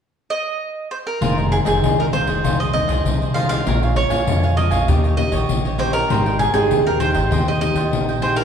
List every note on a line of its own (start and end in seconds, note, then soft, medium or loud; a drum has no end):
0.30 0.87 D#5 medium
0.91 0.96 C5 medium
1.07 1.54 A#4 medium
1.21 1.61 F1 medium
1.21 1.80 F2 medium
1.21 1.63 D#3 medium
1.21 1.63 G#3 medium
1.21 1.63 C4 medium
1.21 1.36 F4 medium
1.21 1.36 G#4 medium
1.21 1.36 C5 medium
1.21 1.37 D#5 medium
1.21 pandeiro medium
1.38 1.51 G#4 soft
1.38 1.51 C5 soft
1.38 1.51 D#5 soft
1.38 pandeiro soft
1.52 1.57 G#4 medium
1.52 muted cavaquinho stroke soft
1.52 pandeiro medium
1.65 1.79 F1 medium
1.65 2.08 D#3 medium
1.65 2.08 G#3 medium
1.65 2.08 C4 medium
1.65 1.99 G#4 medium
1.65 1.97 G#4 soft
1.65 1.96 C5 medium
1.65 1.96 D#5 medium
1.65 pandeiro medium
1.82 2.28 C2 medium
1.82 2.41 C3 soft
1.82 pandeiro medium
1.99 2.12 G#4 soft
1.99 2.05 A#4 medium
1.99 2.12 C5 soft
1.99 2.13 D#5 soft
1.99 pandeiro soft
2.12 2.69 D#3 medium
2.12 2.69 G#3 soft
2.12 2.70 C4 medium
2.12 2.27 F4 soft
2.12 2.27 G#4 soft
2.12 2.60 C5 medium
2.12 2.27 C5 soft
2.12 2.25 D#5 soft
2.12 pandeiro soft
2.26 2.40 F1 medium
2.26 2.43 G#4 medium
2.26 2.42 C5 medium
2.26 2.42 D#5 medium
2.26 pandeiro medium
2.44 2.83 C2 medium
2.44 3.02 F2 medium
2.44 2.58 F4 medium
2.44 2.58 G#4 medium
2.44 2.59 C5 medium
2.44 2.59 D#5 medium
2.44 pandeiro medium
2.60 2.73 G#4 soft
2.60 2.73 C5 soft
2.60 2.73 D#5 soft
2.60 2.72 D#5 medium
2.60 pandeiro soft
2.73 3.13 D#3 soft
2.73 3.14 G#3 soft
2.73 3.14 C4 medium
2.73 3.37 D#5 medium
2.73 muted cavaquinho stroke soft
2.73 pandeiro medium
2.88 3.02 C2 medium
2.88 3.19 G#4 soft
2.88 3.19 C5 medium
2.88 3.18 D#5 medium
2.88 pandeiro medium
3.05 3.57 C2 medium
3.05 3.63 C3 medium
3.05 pandeiro medium
3.21 3.35 G#4 soft
3.21 3.35 C5 soft
3.21 3.35 D#5 soft
3.21 pandeiro soft
3.34 3.61 D#3 soft
3.34 3.61 G#3 soft
3.34 3.61 C4 soft
3.34 3.49 F4 medium
3.34 3.50 G#4 medium
3.34 3.49 C5 medium
3.34 3.48 D#5 medium
3.34 3.48 F5 medium
3.34 pandeiro medium
3.49 3.65 G#4 soft
3.49 3.65 C5 soft
3.49 3.64 D#5 soft
3.49 3.93 F5 medium
3.49 pandeiro medium
3.66 4.05 A#1 medium
3.66 4.24 A#2 medium
3.66 4.07 G#3 medium
3.66 4.07 C#4 medium
3.66 4.07 F4 medium
3.66 3.81 A#4 medium
3.66 3.81 C#5 medium
3.66 3.81 F5 medium
3.66 3.81 G#5 medium
3.66 pandeiro medium
3.83 3.95 C#5 soft
3.83 3.95 F5 soft
3.83 3.96 G#5 soft
3.83 pandeiro soft
3.96 4.57 C#5 medium
3.96 muted cavaquinho stroke soft
3.96 pandeiro medium
4.10 4.24 A#1 medium
4.10 4.21 G#3 medium
4.10 4.22 C#4 medium
4.10 4.22 F4 medium
4.10 4.41 C#5 soft
4.10 4.41 F5 medium
4.10 4.40 G#5 medium
4.10 pandeiro medium
4.27 4.72 F2 medium
4.27 4.85 F2 soft
4.27 4.53 G#3 soft
4.27 4.53 C#4 soft
4.27 4.53 F4 soft
4.27 pandeiro medium
4.43 4.56 C#5 soft
4.43 4.56 F5 soft
4.43 4.57 G#5 soft
4.43 pandeiro soft
4.56 4.77 G#3 soft
4.56 4.77 C#4 soft
4.56 4.77 F4 medium
4.56 4.71 A#4 soft
4.56 4.71 C#5 soft
4.56 5.16 D#5 medium
4.56 4.71 F5 soft
4.56 4.70 G#5 soft
4.56 pandeiro soft
4.71 4.85 A#1 medium
4.71 4.87 C#5 soft
4.71 4.86 F5 medium
4.71 4.86 G#5 medium
4.71 pandeiro medium
4.88 5.27 D#2 medium
4.88 5.46 D#3 medium
4.88 5.14 A#3 medium
4.88 5.14 C#4 soft
4.88 5.02 D#4 medium
4.88 5.02 G4 medium
4.88 5.14 G4 medium
4.88 5.03 C#5 medium
4.88 5.03 D#5 medium
4.88 pandeiro medium
5.04 5.17 G4 soft
5.04 5.18 C#5 soft
5.04 5.18 D#5 soft
5.04 pandeiro soft
5.17 5.57 A#3 medium
5.17 5.57 C#4 medium
5.17 5.58 G4 medium
5.17 5.79 D#5 medium
5.17 muted cavaquinho stroke soft
5.17 pandeiro medium
5.32 5.46 A#1 medium
5.32 5.63 G4 medium
5.32 5.62 C#5 medium
5.32 5.62 D#5 medium
5.32 pandeiro medium
5.49 6.01 A#1 medium
5.49 6.07 A#2 soft
5.49 pandeiro medium
5.65 5.77 G4 soft
5.65 5.78 C#5 soft
5.65 5.79 D#5 soft
5.65 pandeiro soft
5.78 6.04 A#3 soft
5.78 6.05 C#4 medium
5.78 5.93 D#4 medium
5.78 5.93 G4 medium
5.78 6.05 G4 soft
5.78 5.93 C5 medium
5.78 5.93 C#5 medium
5.78 5.92 D#5 medium
5.78 pandeiro medium
5.93 6.09 G4 soft
5.93 6.36 A#4 medium
5.93 6.08 C#5 soft
5.93 6.08 D#5 soft
5.93 pandeiro medium
6.10 6.49 G#1 medium
6.10 6.68 G#3 medium
6.10 6.51 C4 medium
6.10 6.51 D#4 medium
6.10 6.51 G4 medium
6.10 6.24 G#4 medium
6.10 6.24 C5 medium
6.10 6.25 D#5 medium
6.10 6.25 G5 medium
6.10 pandeiro medium
6.26 6.39 C5 soft
6.26 6.39 D#5 soft
6.26 6.39 G5 medium
6.26 pandeiro soft
6.39 6.53 G#4 medium
6.39 muted cavaquinho stroke soft
6.39 pandeiro medium
6.53 6.67 G#1 medium
6.53 6.80 C4 medium
6.53 6.80 D#4 medium
6.53 6.80 G4 medium
6.53 6.86 G#4 medium
6.53 6.85 C5 medium
6.53 6.84 D#5 medium
6.53 6.84 G5 medium
6.53 pandeiro medium
6.71 7.16 D#2 medium
6.71 7.29 D#3 soft
6.71 pandeiro medium
6.87 6.97 C4 medium
6.87 6.97 D#4 medium
6.87 6.97 G4 medium
6.87 7.00 A#4 medium
6.87 7.00 C5 soft
6.87 7.00 D#5 soft
6.87 7.01 G5 soft
6.87 pandeiro soft
7.00 7.41 C4 medium
7.00 7.42 D#4 medium
7.00 7.42 G4 medium
7.00 7.15 G#4 soft
7.00 7.43 C5 medium
7.00 7.15 C5 soft
7.00 7.14 D#5 soft
7.00 7.13 G5 medium
7.00 pandeiro medium
7.14 7.28 G#1 medium
7.14 7.30 C5 medium
7.14 7.30 D#5 medium
7.14 7.29 G5 medium
7.14 pandeiro medium
7.31 7.70 D#2 medium
7.31 7.89 G#3 soft
7.31 7.46 G#4 medium
7.31 7.46 C5 medium
7.31 7.46 D#5 medium
7.31 7.46 G5 medium
7.31 pandeiro medium
7.47 7.57 C4 medium
7.47 7.58 D#4 medium
7.47 7.58 G4 medium
7.47 7.61 C5 soft
7.47 7.60 D#5 medium
7.47 7.62 D#5 soft
7.47 7.61 G5 soft
7.47 pandeiro soft
7.61 8.17 C4 medium
7.61 8.18 D#4 medium
7.61 8.18 G4 medium
7.61 8.19 D#5 medium
7.61 muted cavaquinho stroke soft
7.61 pandeiro medium
7.74 7.89 D#2 medium
7.74 8.07 C5 medium
7.74 8.06 D#5 medium
7.74 8.06 G5 medium
7.74 pandeiro medium
7.92 8.44 A#1 medium
7.92 8.44 D#3 medium
7.92 pandeiro medium
8.09 8.22 C5 soft
8.09 8.22 D#5 soft
8.09 8.22 G5 soft
8.09 pandeiro soft
8.21 8.40 C4 medium
8.21 8.40 D#4 soft
8.21 8.41 G4 medium
8.21 8.37 G#4 medium
8.21 8.36 C5 medium
8.21 8.37 C5 medium
8.21 8.36 D#5 medium
8.21 8.35 G5 medium
8.21 pandeiro medium
8.36 8.44 A#4 medium
8.36 8.44 C5 soft
8.36 8.44 D#5 soft
8.36 8.44 G5 soft
8.36 pandeiro medium